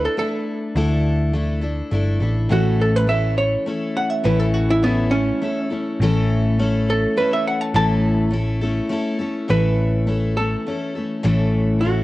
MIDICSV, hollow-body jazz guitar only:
0, 0, Header, 1, 2, 480
1, 0, Start_track
1, 0, Tempo, 582524
1, 628, Time_signature, 3, 2, 24, 8
1, 9919, End_track
2, 0, Start_track
2, 0, Title_t, "Hollow-body jazz guitar"
2, 0, Program_c, 0, 26
2, 42, Note_on_c, 0, 69, 80
2, 146, Note_off_c, 0, 69, 0
2, 156, Note_on_c, 0, 69, 88
2, 1558, Note_off_c, 0, 69, 0
2, 2077, Note_on_c, 0, 66, 82
2, 2305, Note_off_c, 0, 66, 0
2, 2319, Note_on_c, 0, 69, 72
2, 2439, Note_off_c, 0, 69, 0
2, 2439, Note_on_c, 0, 71, 80
2, 2545, Note_on_c, 0, 76, 77
2, 2550, Note_off_c, 0, 71, 0
2, 2778, Note_off_c, 0, 76, 0
2, 2783, Note_on_c, 0, 73, 84
2, 3017, Note_off_c, 0, 73, 0
2, 3268, Note_on_c, 0, 78, 92
2, 3376, Note_off_c, 0, 78, 0
2, 3376, Note_on_c, 0, 76, 80
2, 3497, Note_off_c, 0, 76, 0
2, 3503, Note_on_c, 0, 71, 85
2, 3621, Note_off_c, 0, 71, 0
2, 3621, Note_on_c, 0, 69, 89
2, 3738, Note_off_c, 0, 69, 0
2, 3738, Note_on_c, 0, 66, 74
2, 3858, Note_off_c, 0, 66, 0
2, 3876, Note_on_c, 0, 64, 89
2, 3985, Note_on_c, 0, 59, 91
2, 3988, Note_off_c, 0, 64, 0
2, 4209, Note_on_c, 0, 61, 91
2, 4218, Note_off_c, 0, 59, 0
2, 5147, Note_off_c, 0, 61, 0
2, 5685, Note_on_c, 0, 69, 90
2, 5907, Note_off_c, 0, 69, 0
2, 5913, Note_on_c, 0, 71, 87
2, 6025, Note_off_c, 0, 71, 0
2, 6041, Note_on_c, 0, 76, 84
2, 6149, Note_off_c, 0, 76, 0
2, 6159, Note_on_c, 0, 78, 75
2, 6270, Note_off_c, 0, 78, 0
2, 6270, Note_on_c, 0, 81, 76
2, 6383, Note_off_c, 0, 81, 0
2, 6394, Note_on_c, 0, 81, 101
2, 6854, Note_off_c, 0, 81, 0
2, 7829, Note_on_c, 0, 71, 94
2, 8514, Note_off_c, 0, 71, 0
2, 8544, Note_on_c, 0, 69, 88
2, 9713, Note_off_c, 0, 69, 0
2, 9728, Note_on_c, 0, 66, 70
2, 9919, Note_off_c, 0, 66, 0
2, 9919, End_track
0, 0, End_of_file